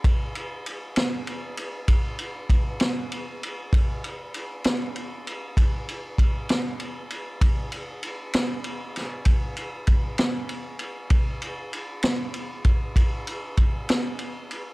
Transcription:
0.04 kick loud
0.04 ride medium
0.35 ride medium
0.66 ride medium
0.96 snare loud
0.96 ride loud
1.27 ride medium
1.57 ride medium
1.88 kick medium
1.88 ride medium
2.19 ride medium
2.50 kick medium
2.50 ride medium
2.80 snare loud
2.80 ride medium
3.12 ride medium
3.43 ride medium
3.73 kick loud
3.73 ride medium
4.04 ride medium
4.34 ride medium
4.64 snare loud
4.64 ride medium
4.96 ride medium
5.27 ride medium
5.57 kick medium
5.57 ride medium
5.89 ride medium
6.18 kick medium
6.18 ride medium
6.49 snare loud
6.49 ride medium
6.80 ride medium
7.10 ride medium
7.41 kick loud
7.41 ride medium
7.72 ride medium
8.03 ride medium
8.33 snare loud
8.33 ride loud
8.64 ride medium
8.96 snare soft
8.96 ride medium
9.25 kick medium
9.25 ride medium
9.57 ride medium
9.87 kick medium
9.87 ride medium
10.18 snare loud
10.18 ride medium
10.49 ride medium
10.79 ride medium
11.10 kick loud
11.10 ride medium
11.42 ride medium
11.73 ride medium
12.03 snare loud
12.03 ride medium
12.34 ride medium
12.64 kick medium
12.64 ride medium
12.96 kick medium
12.96 ride medium
13.27 ride medium
13.57 kick medium
13.57 ride medium
13.89 snare loud
13.89 ride medium
14.19 ride medium
14.51 ride medium

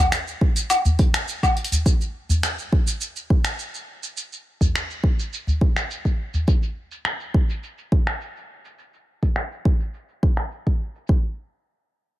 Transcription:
0.12 finger snap medium
0.12 open hi-hat medium
0.12 shaker medium
0.28 shaker soft
0.41 kick loud
0.56 open hi-hat soft
0.56 shaker medium
0.70 open hi-hat medium
0.70 low woodblock medium
0.70 shaker medium
0.85 udu loud
0.85 shaker soft
0.99 kick loud
0.99 open hi-hat soft
1.14 finger snap medium
1.14 open hi-hat soft
1.14 shaker medium
1.28 shaker medium
1.43 kick medium
1.43 low woodblock medium
1.43 shaker soft
1.57 open hi-hat soft
1.65 open hi-hat medium
1.72 open hi-hat soft
1.72 udu medium
1.72 shaker medium
1.86 kick loud
1.86 shaker medium
2.01 shaker soft
2.29 udu medium
2.29 shaker medium
2.43 finger snap medium
2.43 shaker medium
2.59 shaker soft
2.73 kick loud
2.87 shaker medium
3.01 shaker medium
3.16 shaker soft
3.30 kick loud
3.45 finger snap medium
3.45 shaker medium
3.59 shaker medium
3.75 shaker soft
4.03 shaker medium
4.17 shaker medium
4.33 shaker soft
4.61 kick medium
4.61 udu medium
4.61 shaker medium
4.75 finger snap medium
4.75 shaker medium
4.91 shaker soft
5.04 kick loud
5.20 shaker medium
5.33 shaker medium
5.47 udu medium
5.47 shaker soft
5.61 kick loud
5.76 finger snap medium
5.76 shaker medium
5.91 shaker medium
6.05 kick medium
6.05 shaker soft
6.34 udu medium
6.34 shaker medium
6.48 kick loud
6.48 shaker medium
6.63 shaker soft
6.92 shaker medium
7.05 finger snap medium
7.05 shaker medium
7.20 shaker soft
7.34 kick loud
7.50 shaker medium
7.64 shaker medium
7.78 shaker soft
7.92 kick loud
8.07 finger snap medium
8.07 shaker medium
8.21 shaker medium
8.36 shaker soft
8.65 shaker medium
8.79 shaker medium
8.94 shaker soft
9.23 kick medium
9.23 shaker medium
9.36 finger snap medium
9.36 shaker medium
9.52 shaker soft
9.65 kick loud
9.80 shaker medium
9.94 shaker medium
10.09 shaker soft
10.23 kick medium
10.37 finger snap medium
10.37 shaker medium
10.51 shaker medium
10.67 kick medium
10.95 shaker medium
11.09 kick medium

